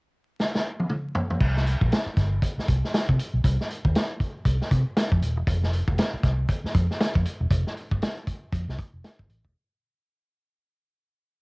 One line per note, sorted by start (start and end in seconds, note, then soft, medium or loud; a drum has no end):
0.40 snare medium
0.55 snare medium
0.79 high tom medium
0.89 mid tom medium
1.15 floor tom loud
1.30 floor tom medium
1.40 1.74 C2 medium
1.40 kick loud
1.40 crash medium
1.57 snare soft
1.67 closed hi-hat soft
1.81 1.90 A#1 medium
1.81 kick medium
1.92 snare loud
1.92 closed hi-hat medium
2.06 muted fingered electric bass stroke soft
2.17 2.38 G1 medium
2.17 kick medium
2.17 snare soft
2.17 closed hi-hat soft
2.42 kick medium
2.42 closed hi-hat medium
2.58 muted fingered electric bass stroke soft
2.58 snare soft
2.68 2.81 C2 medium
2.68 kick medium
2.68 closed hi-hat medium
2.85 snare soft
2.94 snare loud
2.94 closed hi-hat medium
3.09 3.17 C3 medium
3.09 kick medium
3.19 closed hi-hat medium
3.34 3.42 B1 medium
3.44 3.57 C2 medium
3.44 kick medium
3.44 closed hi-hat medium
3.61 snare soft
3.70 closed hi-hat medium
3.85 3.93 D#2 medium
3.85 kick medium
3.95 snare loud
3.95 closed hi-hat medium
4.20 kick medium
4.20 closed hi-hat medium
4.45 4.58 C2 medium
4.45 kick medium
4.45 closed hi-hat medium
4.62 snare soft
4.71 4.84 C3 medium
4.71 kick medium
4.71 closed hi-hat medium
4.97 snare loud
4.97 closed hi-hat loud
5.12 5.20 F2 medium
5.12 kick medium
5.21 5.37 D#1 medium
5.21 closed hi-hat medium
5.37 5.45 E1 medium
5.47 5.81 F1 medium
5.47 kick loud
5.47 closed hi-hat medium
5.64 snare soft
5.73 closed hi-hat medium
5.88 5.96 F1 medium
5.88 kick medium
5.98 snare loud
5.98 closed hi-hat medium
6.14 muted fingered electric bass stroke soft
6.23 6.44 C2 medium
6.23 kick medium
6.23 snare soft
6.23 closed hi-hat medium
6.49 kick medium
6.49 closed hi-hat medium
6.64 muted fingered electric bass stroke soft
6.64 snare soft
6.74 6.87 F2 medium
6.74 kick medium
6.74 closed hi-hat medium
6.91 snare soft
7.00 snare loud
7.00 closed hi-hat medium
7.15 7.24 F2 medium
7.15 kick medium
7.25 closed hi-hat medium
7.41 7.49 E1 medium
7.51 7.63 F1 medium
7.51 kick loud
7.51 closed hi-hat medium
7.67 snare soft
7.77 closed hi-hat medium
7.91 8.00 G1 medium
7.91 kick medium
8.02 snare loud
8.02 closed hi-hat medium
8.27 kick medium
8.27 closed hi-hat medium
8.52 8.65 F2 loud
8.52 kick medium
8.52 closed hi-hat medium
8.68 8.76 C2 medium
8.68 snare soft
8.78 kick medium
8.78 closed hi-hat medium
8.93 9.02 F1 medium
9.04 snare loud
9.04 closed hi-hat medium
9.19 9.27 G1 medium
9.19 kick medium
9.29 9.41 A1 medium
9.29 closed hi-hat medium
9.45 kick medium